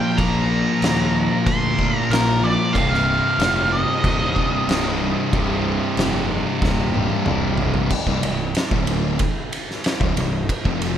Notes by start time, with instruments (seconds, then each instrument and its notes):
Already playing: distorted electric guitar A#2 F3 A#3, lead electric guitar G5
0.17 fingered electric bass A#1, distorted electric guitar A#2 F3 A#3, lead electric guitar A#5, kick, crash
0.82 fingered electric bass D#2, snare, crash
1.46 fingered electric bass D2, lead electric guitar C6, kick, crash
1.78 distorted electric guitar A#2 F3 A#3, kick
1.97 lead electric guitar A#5
2.10 fingered electric bass A#1, distorted electric guitar A#2 F3 A#3, lead electric guitar A#4, snare, crash
2.42 distorted electric guitar A#2 F3 A#3, lead electric guitar D5
2.73 fingered electric bass C1, distorted electric guitar C2 G2 C3, lead electric guitar F5, kick, crash
2.94 snare
3.39 fingered electric bass F1, snare, crash
3.72 lead electric guitar D#5
4.04 fingered electric bass D#1, kick, crash
4.34 distorted electric guitar C2 G2 C3, kick
4.67 fingered electric bass C1, distorted electric guitar C2 G2 C3, crash
4.71 snare
5.00 distorted electric guitar C2 G2 C3
5.31 fingered electric bass C1, distorted electric guitar C2 G2 C3, kick, crash
5.97 fingered electric bass F1, snare, crash
6.62 fingered electric bass D#1, kick, snare
6.94 distorted electric guitar C2 G2 C3, high tom
7.10 high tom
7.25 fingered electric bass C1, distorted electric guitar C2 G2 C3, mid tom
7.58 distorted electric guitar C2 G2 C3, floor tom
7.74 floor tom
7.90 kick, crash
8.06 fingered electric bass C1, distorted electric guitar C2 G2, kick
8.23 fingered electric bass C1, distorted electric guitar C2 G2, ride
8.55 snare, ride
8.71 fingered electric bass D1, distorted electric guitar D2 A2 D3, kick
8.87 ride
9.19 kick, ride
9.53 ride
9.71 snare
9.84 snare, ride
10.00 fingered electric bass D1, distorted electric guitar D2 A2, kick
10.17 fingered electric bass C1, distorted electric guitar C2 G2, ride
10.49 kick, ride
10.65 fingered electric bass F1, distorted electric guitar F2 C3 F3, kick
10.82 ride